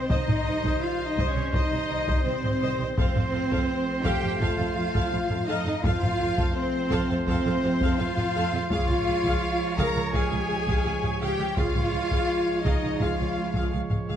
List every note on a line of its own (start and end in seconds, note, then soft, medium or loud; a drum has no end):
0.09 0.17 C2 medium
0.09 2.94 D#3 medium
0.09 2.95 G3 medium
0.09 0.82 D#4 medium
0.09 0.83 D#4 loud
0.09 0.27 C5 medium
0.09 2.94 C5 medium
0.09 0.27 D#5 medium
0.09 0.82 D#5 medium
0.09 0.81 D#5 medium
0.09 taiko loud
0.27 0.34 C2 medium
0.27 0.36 C5 medium
0.27 0.36 D#5 medium
0.27 taiko low-mid medium
0.45 0.52 C2 medium
0.45 0.54 C5 medium
0.45 0.54 D#5 medium
0.63 0.71 C2 medium
0.63 0.82 C5 medium
0.63 0.82 D#5 medium
0.63 taiko medium
0.82 1.05 F4 medium
0.82 1.07 F4 loud
0.82 1.06 F5 medium
0.82 1.07 F5 medium
1.04 1.29 D#4 medium
1.04 1.30 D#4 medium
1.04 1.29 D#5 medium
1.04 1.30 D#5 medium
1.17 1.25 C2 medium
1.17 1.35 C5 medium
1.17 1.35 D#5 medium
1.17 taiko medium
1.28 1.54 C#4 medium
1.28 1.53 C#5 medium
1.28 1.54 C#5 medium
1.36 1.43 C2 medium
1.36 1.43 C5 medium
1.36 1.43 D#5 medium
1.51 1.61 C2 medium
1.51 2.26 D#4 loud
1.51 2.25 D#4 medium
1.51 1.71 C5 medium
1.51 2.23 D#5 medium
1.51 1.71 D#5 medium
1.51 2.26 D#5 medium
1.51 taiko medium
1.71 1.79 C2 medium
1.71 1.80 C5 medium
1.71 1.79 D#5 medium
1.89 1.97 C2 medium
1.89 1.98 C5 medium
1.89 1.97 D#5 medium
2.08 2.15 C2 medium
2.08 2.25 C5 medium
2.08 2.25 D#5 medium
2.08 taiko medium
2.24 2.33 C2 medium
2.24 2.96 C4 medium
2.24 2.95 C5 medium
2.24 2.33 C5 medium
2.24 2.95 C5 medium
2.24 2.33 D#5 medium
2.44 2.51 C2 medium
2.44 2.52 C5 medium
2.44 2.52 D#5 medium
2.44 taiko low-mid medium
2.61 2.69 C2 medium
2.61 2.78 C5 medium
2.61 2.78 D#5 medium
2.79 2.86 C2 medium
2.79 2.88 C5 medium
2.79 2.87 D#5 medium
2.97 3.04 F2 medium
2.97 5.66 F3 medium
2.97 5.66 A3 medium
2.97 4.03 C4 loud
2.97 3.15 A4 medium
2.97 4.02 C5 medium
2.97 5.51 C5 medium
2.97 3.14 F5 medium
2.97 taiko loud
3.15 3.22 F2 medium
3.15 3.23 A4 medium
3.15 3.23 F5 medium
3.15 taiko low-mid medium
3.32 3.40 F2 medium
3.32 3.40 A4 medium
3.32 3.40 F5 medium
3.51 3.58 F2 medium
3.51 3.68 A4 medium
3.51 3.68 F5 medium
3.51 taiko medium
4.04 4.12 F2 medium
4.04 4.40 G4 medium
4.04 4.41 G4 loud
4.04 4.21 A4 medium
4.04 4.21 F5 medium
4.04 4.40 G5 medium
4.04 4.41 G5 medium
4.04 taiko medium
4.22 4.30 F2 medium
4.22 4.29 A4 medium
4.22 4.30 F5 medium
4.40 4.47 F2 medium
4.40 5.45 F4 medium
4.40 5.48 F4 medium
4.40 4.57 A4 medium
4.40 5.47 F5 medium
4.40 4.57 F5 medium
4.40 5.46 F5 medium
4.40 taiko medium
4.58 4.66 F2 medium
4.58 4.65 A4 medium
4.58 4.65 F5 medium
4.76 4.83 F2 medium
4.76 4.83 A4 medium
4.76 4.83 F5 medium
4.93 5.01 F2 medium
4.93 5.10 A4 medium
4.93 5.10 F5 medium
4.93 taiko medium
5.11 5.19 F2 medium
5.11 5.19 A4 medium
5.11 5.18 F5 medium
5.30 5.37 F2 medium
5.30 5.37 A4 medium
5.30 5.37 F5 medium
5.30 taiko low-mid medium
5.47 5.55 F2 medium
5.47 5.83 D#4 medium
5.47 5.83 D#4 loud
5.47 5.64 A4 medium
5.47 5.83 D#5 medium
5.47 5.64 F5 loud
5.66 5.73 F2 medium
5.66 5.73 A4 medium
5.66 5.73 F5 medium
5.82 5.91 F2 loud
5.82 8.66 F3 medium
5.82 8.67 A3 medium
5.82 6.38 F4 loud
5.82 6.55 F4 loud
5.82 6.00 A4 medium
5.82 8.66 C5 medium
5.82 6.54 F5 loud
5.82 6.53 F5 loud
5.82 6.00 F5 medium
5.82 taiko loud
6.01 6.09 F2 medium
6.01 6.08 A4 medium
6.01 6.08 F5 medium
6.01 taiko low-mid medium
6.19 6.27 F2 medium
6.19 6.26 A4 medium
6.19 6.26 F5 medium
6.37 6.45 F2 medium
6.37 6.53 A4 medium
6.37 6.54 F5 medium
6.37 taiko medium
6.55 7.25 C4 loud
6.55 7.25 C4 medium
6.55 7.24 C5 medium
6.55 7.26 C5 medium
6.91 6.98 F2 medium
6.91 7.07 A4 loud
6.91 7.07 F5 medium
6.91 taiko medium
7.09 7.16 F2 medium
7.09 7.17 A4 medium
7.09 7.17 F5 medium
7.26 7.34 F2 loud
7.26 7.98 C4 medium
7.26 7.98 C4 loud
7.26 7.44 A4 loud
7.26 7.97 C5 loud
7.26 7.98 C5 loud
7.26 7.44 F5 medium
7.26 taiko medium
7.45 7.52 F2 medium
7.45 7.53 A4 medium
7.45 7.53 F5 medium
7.63 7.70 F2 medium
7.63 7.71 A4 medium
7.63 7.71 F5 medium
7.81 7.88 F2 medium
7.81 7.98 A4 medium
7.81 7.98 F5 medium
7.81 taiko medium
7.99 8.06 F2 medium
7.99 8.70 F4 loud
7.99 8.07 A4 medium
7.99 8.70 F5 medium
7.99 8.06 F5 medium
7.99 8.70 F5 loud
8.17 8.24 F2 medium
8.17 8.25 A4 medium
8.17 8.25 F5 medium
8.17 taiko low-mid medium
8.35 8.42 F2 loud
8.35 8.52 A4 loud
8.35 8.51 F5 medium
8.53 8.60 F2 medium
8.53 8.61 A4 medium
8.53 8.61 F5 medium
8.70 8.77 C#2 medium
8.70 11.53 F3 medium
8.70 11.53 G#3 medium
8.70 9.76 F4 loud
8.70 8.87 G#4 medium
8.70 11.53 C#5 medium
8.70 9.76 F5 loud
8.70 8.87 F5 medium
8.70 taiko medium
8.88 8.95 C#2 medium
8.88 8.96 G#4 medium
8.88 8.96 F5 medium
8.88 taiko low-mid medium
9.07 9.14 C#2 medium
9.07 9.14 G#4 medium
9.07 9.14 F5 medium
9.24 9.32 C#2 medium
9.24 9.41 G#4 medium
9.24 9.41 F5 medium
9.24 taiko medium
9.78 9.85 C#2 loud
9.78 9.94 G#4 loud
9.78 10.13 A#4 loud
9.78 10.14 A#4 loud
9.78 9.94 F5 loud
9.78 10.14 A#5 medium
9.78 10.13 A#5 loud
9.78 taiko medium
9.96 10.03 C#2 medium
9.96 10.03 G#4 medium
9.96 10.03 F5 medium
10.13 10.20 C#2 medium
10.13 10.30 G#4 medium
10.13 11.21 G#4 loud
10.13 11.23 G#4 medium
10.13 10.30 F5 medium
10.13 11.19 G#5 medium
10.13 taiko medium
10.31 10.38 C#2 medium
10.31 10.38 G#4 medium
10.31 10.38 F5 medium
10.49 10.56 C#2 medium
10.49 10.56 G#4 medium
10.49 10.56 F5 medium
10.67 10.74 C#2 loud
10.67 10.84 G#4 loud
10.67 10.84 F5 medium
10.67 taiko medium
10.85 10.92 C#2 medium
10.85 10.93 G#4 medium
10.85 10.93 F5 medium
11.03 11.10 C#2 medium
11.03 11.10 G#4 medium
11.03 11.11 F5 medium
11.03 taiko low-mid medium
11.21 11.28 C#2 medium
11.21 11.57 G4 loud
11.21 11.58 G4 medium
11.21 11.38 G#4 medium
11.21 11.38 F5 medium
11.21 11.57 G5 medium
11.38 11.46 C#2 medium
11.38 11.46 G#4 medium
11.38 11.46 F5 medium
11.57 11.64 C#2 medium
11.57 14.16 F3 medium
11.57 14.16 G#3 medium
11.57 12.63 F4 loud
11.57 12.65 F4 loud
11.57 11.73 G#4 medium
11.57 14.13 C#5 medium
11.57 11.73 F5 medium
11.57 12.63 F5 loud
11.57 12.65 F5 loud
11.57 taiko medium
11.74 11.82 C#2 medium
11.74 11.82 G#4 medium
11.74 11.82 F5 medium
11.74 taiko low-mid soft
11.93 12.00 C#2 medium
11.93 12.00 G#4 medium
11.93 12.00 F5 medium
12.11 12.18 C#2 medium
12.11 12.28 G#4 medium
12.11 12.28 F5 medium
12.11 taiko medium
12.65 12.72 C#2 medium
12.65 13.00 D#4 loud
12.65 13.01 D#4 medium
12.65 12.82 G#4 medium
12.65 13.00 D#5 medium
12.65 13.01 D#5 medium
12.65 12.82 F5 medium
12.65 taiko medium
12.83 12.90 C#2 medium
12.83 12.90 G#4 medium
12.83 12.90 F5 medium
13.00 13.08 C#2 medium
13.00 13.73 F4 medium
13.00 13.72 F4 medium
13.00 13.17 G#4 medium
13.00 13.17 F5 medium
13.00 13.72 F5 medium
13.00 13.73 F5 medium
13.00 taiko medium
13.19 13.26 C#2 medium
13.19 13.26 G#4 medium
13.19 13.26 F5 medium
13.36 13.44 C#2 medium
13.36 13.43 G#4 medium
13.36 13.44 F5 medium
13.54 13.62 C#2 medium
13.54 13.71 G#4 medium
13.54 13.71 F5 medium
13.54 taiko medium
13.72 13.80 C#2 medium
13.72 13.80 G#4 medium
13.72 13.80 F5 medium
13.90 13.98 C#2 medium
13.90 13.98 G#4 medium
13.90 13.98 F5 medium
13.90 taiko low-mid soft
14.08 14.16 C#2 medium
14.08 14.16 G#4 medium
14.08 14.16 F5 medium